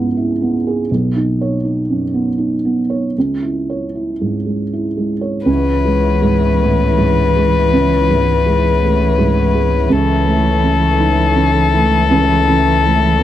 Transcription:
Already playing: felt piano C#2 G#2 B3 E4 G#4
0.17 felt piano E4
0.42 felt piano B3
0.67 felt piano G#4
0.91 felt piano B1
1.16 felt piano D#4
1.41 felt piano C#5
1.64 felt piano D#4
1.89 felt piano F#2
2.14 felt piano B3
2.38 felt piano D#4
2.65 felt piano B3
2.90 felt piano C#5
3.18 felt piano C#2
3.42 felt piano E4
3.70 felt piano C#5
3.95 felt piano E4
4.21 felt piano G#2
4.46 felt piano G#3
4.73 felt piano E4
4.97 felt piano G#3
5.21 felt piano C#5
5.45 felt piano C#2, sub bass C#2, cello E3, harmonium B3 E4 C#5, violin B4
5.85 felt piano G#3
6.22 felt piano G#2
6.60 felt piano A2
6.98 felt piano G#2
7.36 felt piano G#3
7.73 felt piano C#2
8.10 felt piano G#2
8.46 felt piano G#3
8.82 felt piano A3
9.19 felt piano G#2
9.55 felt piano G#3
9.90 felt piano C#2, sub bass C#2, harmonium E3 A3 C#5, cello E3, violin A4
10.25 felt piano A3
10.64 felt piano C#3
10.99 felt piano D#4
11.36 felt piano C#3
11.74 felt piano A3
12.10 felt piano C#2
12.48 felt piano C#3
12.84 felt piano A3
13.19 felt piano B3

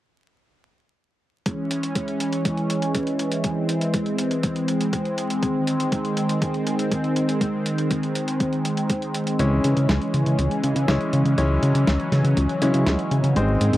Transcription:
1.46 analog synth pad E3 G#3 C#4, kick, closed hi-hat
1.71 closed hi-hat
1.83 closed hi-hat
1.95 kick, closed hi-hat
2.08 closed hi-hat
2.20 closed hi-hat
2.33 closed hi-hat
2.45 kick, closed hi-hat
2.57 closed hi-hat
2.70 closed hi-hat
2.82 closed hi-hat
2.95 kick, closed hi-hat
3.07 closed hi-hat
3.19 closed hi-hat
3.32 closed hi-hat
3.44 analog synth pad C4, kick, closed hi-hat
3.69 closed hi-hat
3.81 closed hi-hat
3.94 kick, closed hi-hat
4.06 closed hi-hat
4.18 closed hi-hat
4.31 closed hi-hat
4.43 kick, closed hi-hat
4.56 closed hi-hat
4.68 closed hi-hat
4.81 closed hi-hat
4.93 kick, closed hi-hat
5.05 closed hi-hat
5.18 closed hi-hat
5.30 closed hi-hat
5.42 analog synth pad D#3, kick, closed hi-hat
5.67 closed hi-hat
5.80 closed hi-hat
5.92 kick, closed hi-hat
6.05 closed hi-hat
6.17 closed hi-hat
6.29 closed hi-hat
6.42 kick, closed hi-hat
6.54 closed hi-hat
6.67 closed hi-hat
6.79 closed hi-hat
6.91 kick, closed hi-hat
7.04 closed hi-hat
7.16 closed hi-hat
7.29 closed hi-hat
7.41 kick, closed hi-hat
7.66 closed hi-hat
7.78 closed hi-hat
7.91 kick, closed hi-hat
8.03 closed hi-hat
8.15 closed hi-hat
8.28 closed hi-hat
8.40 kick, closed hi-hat
8.53 closed hi-hat
8.65 closed hi-hat
8.77 closed hi-hat
8.90 kick, closed hi-hat
9.02 closed hi-hat
9.14 closed hi-hat
9.27 closed hi-hat
9.39 analog synth bass C#2, analog synth pad E3 G#3 C#4, grand piano G#3 C#4 E4 C#5, kick, closed hi-hat
9.64 analog synth bass C#3, closed hi-hat
9.77 analog synth bass C#3, closed hi-hat
9.89 analog synth bass C#2, kick, snare, closed hi-hat
10.02 closed hi-hat
10.14 analog synth bass C#3, closed hi-hat
10.26 analog synth bass C#3, closed hi-hat
10.39 analog synth bass C#2, kick, closed hi-hat
10.51 closed hi-hat
10.64 analog synth bass C#3, closed hi-hat
10.76 analog synth bass C#3, closed hi-hat
10.88 analog synth bass C#2, grand piano G#3 C#4 E4 C#5, kick, snare, closed hi-hat
11.01 closed hi-hat
11.13 analog synth bass C#3, closed hi-hat
11.25 analog synth bass C#3, closed hi-hat
11.38 analog synth bass C#2, analog synth pad F#3, grand piano G#3 C#4 E4 C#5, kick, closed hi-hat
11.63 analog synth bass C#3, closed hi-hat
11.75 analog synth bass C#3, closed hi-hat
11.87 analog synth bass C#2, kick, snare, closed hi-hat
12.00 closed hi-hat
12.12 analog synth bass C#3, snare, closed hi-hat
12.25 analog synth bass C#3, closed hi-hat
12.37 analog synth bass C#2, kick, closed hi-hat
12.49 closed hi-hat
12.62 analog synth bass C#3, grand piano G#3 C#4 E4 C#5, closed hi-hat
12.74 analog synth bass C#3, closed hi-hat
12.87 analog synth bass C#2, kick, snare, closed hi-hat
12.99 closed hi-hat
13.11 analog synth bass C#3, closed hi-hat
13.24 analog synth bass C#3, closed hi-hat
13.36 analog synth bass G#1, analog synth pad D#3 G#3 C4, grand piano G#3 C4 D#4 C5, kick, closed hi-hat
13.61 analog synth bass G#2, closed hi-hat
13.73 analog synth bass G#2, closed hi-hat

